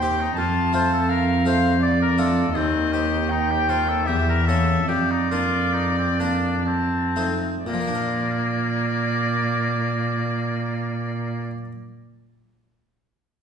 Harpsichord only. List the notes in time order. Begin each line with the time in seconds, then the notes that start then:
Already playing: D#2
0.02 C4 G4
0.37 F2
0.73 A3 C4 F4
1.45 A3 C4 F4
2.18 A3 D4 F4
2.55 D#2
2.94 C4
3.69 C4
4.08 E2
4.49 A#3 C#4
4.89 F2
5.32 A#3 D4
6.20 A#3 D4
7.16 A3 C4 D#4
7.66 A#2
7.73 F3
7.80 A#3
7.87 D4
7.95 A#4